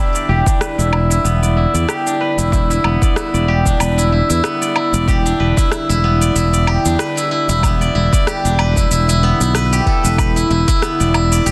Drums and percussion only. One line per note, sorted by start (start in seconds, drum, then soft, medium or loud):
0.15 shaker soft
0.46 kick loud
0.46 shaker medium
0.61 cross-stick loud
0.61 shaker medium
0.79 shaker soft
0.93 low woodblock medium
1.11 shaker medium
1.25 shaker medium
1.43 shaker soft
1.75 shaker medium
1.89 cross-stick medium
1.89 low woodblock medium
1.89 shaker medium
2.07 shaker soft
2.39 shaker medium
2.52 kick loud
2.52 shaker medium
2.71 shaker soft
2.84 low woodblock medium
3.02 kick loud
3.02 shaker medium
3.16 cross-stick loud
3.16 shaker medium
3.35 shaker soft
3.66 kick medium
3.66 shaker medium
3.80 low woodblock medium
3.80 shaker medium
3.99 shaker soft
4.30 shaker medium
4.44 cross-stick loud
4.44 shaker soft
4.62 shaker soft
4.76 low woodblock medium
4.94 shaker medium
5.08 kick loud
5.08 shaker medium
5.26 shaker soft
5.57 kick loud
5.57 shaker medium
5.72 cross-stick loud
5.72 low woodblock medium
5.72 shaker medium
5.90 shaker soft
6.22 shaker medium
6.36 shaker medium
6.54 shaker soft
6.67 low woodblock medium
6.86 shaker medium
6.99 cross-stick loud
6.99 shaker medium
7.18 shaker soft
7.49 shaker medium
7.63 kick loud
7.63 low woodblock medium
7.63 shaker soft
7.82 shaker soft
8.13 kick loud
8.13 shaker medium
8.27 cross-stick loud
8.27 shaker medium
8.45 shaker soft
8.59 low woodblock medium
8.76 kick medium
8.76 shaker medium
8.91 shaker medium
9.09 shaker soft
9.41 shaker medium
9.55 cross-stick medium
9.55 low woodblock medium
9.55 shaker medium
9.73 shaker soft
9.86 kick medium
10.05 shaker medium
10.18 kick loud
10.18 low woodblock medium
10.18 shaker medium
10.37 shaker soft
10.68 kick loud
10.68 shaker medium
10.82 cross-stick medium
10.82 shaker medium
11.01 shaker soft
11.14 low woodblock medium
11.33 shaker medium
11.47 shaker medium